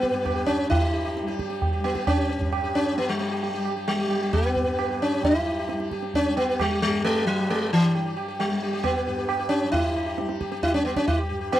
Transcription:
Already playing: F#3 G3 B3
0.02 G4, tabla ke
0.10 G2 G4
0.14 tabla te
0.24 G4, tabla na, tabla ge
0.35 G4
0.46 C#4, tabla ge
0.67 F#3 E4
0.71 tabla tin, tabla ge
0.81 G4
0.94 G4
1.05 G4
1.17 tabla te
1.23 G3
1.27 G4, tabla te
1.39 G4, tabla ke
1.50 G4, tabla te
1.62 tabla tin, tabla ge
1.73 G4
1.80 G3
1.84 B3, tabla na
1.95 G4, tabla ke
2.07 C#4, tabla na, tabla ge
2.17 G4
2.29 G4, tabla te
2.36 G2
2.40 G4, tabla ge
2.52 G4, tabla na
2.63 G4
2.75 C#4
2.86 G4
2.92 F#3
2.98 B3, tabla te
3.09 G3
3.20 G4, tabla te
3.32 G4
3.43 G4, tabla tin
3.49 G3
3.54 G4
3.65 tabla na
3.76 G4
3.88 G3, tabla tin
3.99 G4
4.06 G3
4.10 G4, tabla na
4.22 G4
4.33 B3, tabla na, tabla ge
4.45 G4
4.56 tabla ge
4.61 G2
4.67 G4
4.79 G4, tabla na
4.91 G4
5.02 C#4
5.14 F#3 G4
5.24 E4, tabla tin, tabla ge
5.36 G4
5.46 G4
5.59 G4
5.69 G3 G4, tabla te
5.80 tabla te
5.91 G4, tabla ke
6.03 tabla te
6.14 C#4, tabla tin, tabla ge
6.25 G3 G4
6.37 B3, tabla na
6.49 G4
6.59 G3, tabla na, tabla ge
6.71 G4
6.82 G2 G3
6.93 G4
7.04 G#3, tabla na
7.16 G4
7.27 F#3
7.39 F#3 G4
7.50 G#3, tabla na
7.73 E3
7.84 G4
7.95 G3 G4, tabla tin
8.06 G4
8.16 G4, tabla na
8.28 G4
8.39 G3, tabla tin
8.51 G3
8.63 G4
8.73 G4
8.84 B3, tabla na, tabla ge
8.96 G4
9.07 G2 G4
9.18 G4
9.29 G4, tabla na
9.39 G4
9.49 C#4
9.64 F#3
9.72 E4, tabla tin, tabla ge
9.84 G4
9.96 G4
10.06 G4
10.18 G3, tabla te
10.29 tabla te
10.40 G4, tabla ke
10.52 G4, tabla te
10.63 E4, tabla tin, tabla ge
10.74 G3 C#4
10.85 B3, tabla na
10.96 C#4, tabla ke
11.08 E4, tabla na, tabla ge
11.19 G4
11.29 G2 G4
11.41 G4
11.52 B3, tabla na

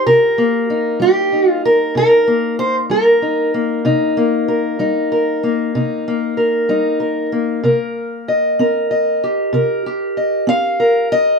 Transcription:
Already playing: D#4 G4
0.06 C3 A#4
0.38 A#3
0.70 D#4
1.00 G3 G4
1.32 D#4
1.49 F4
1.65 A#4
1.95 C3 A#4
2.27 A#3
2.59 C5
2.90 G3 A#4
3.22 D#4
3.54 A#3
3.85 C3 D#4
4.17 A#3
4.48 A#4
4.79 G3 D#4
5.12 A#4
5.43 A#3
5.75 C3 D#4
6.08 A#3
6.37 A#4
6.69 G3 D#4
7.00 A#4
7.32 A#3
7.63 C3 A#4
8.28 D#5
8.59 C4 A#4
8.91 D#5
9.24 G4
9.53 C3 A#4
9.86 G4
10.17 D#5
10.47 C4 F5
10.80 A#4
11.12 D#5

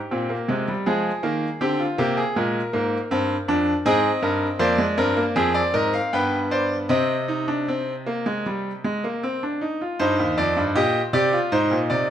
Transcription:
Already playing: G4
0.11 A#2 C4
0.29 A#3
0.48 C3 G#3
0.68 G3
0.86 F3 G#3 G#4
1.23 D#3 A#3
1.61 D3 C4 G4
1.80 F4
1.98 C3 A#3 G4
2.17 G#4
2.36 A#2 G#3 A#4
2.73 G#2 A#3
3.11 G2 C4
3.48 F2 D4
3.85 G#2 C4 G#4 D#5
4.22 G2 A#4
4.59 F2 A#3 C5 D5
4.78 G#3
4.98 G2 C4 A#4
5.17 A#3
5.36 F2 C4 G#4 C5
5.54 D5
5.74 G#2 A#4 D#5
5.94 F5
6.13 G2 B3 B4 G5
6.51 C5 D5
6.89 C3 C4 D#5
7.28 D#4
7.48 D4
7.68 C4
8.07 A#3
8.26 G#3
8.46 G3
8.84 G#3
9.04 A#3
9.23 C4
9.43 D4
9.61 D#4
9.81 F4
9.99 G2 D#4 C5
10.19 D#2
10.38 F2 D5
10.57 G2
10.75 A#2 G4 D#5
11.13 C3 G4 D5
11.33 F4
11.52 G#2 D#4 C5
11.71 A#2
11.90 C3 D5

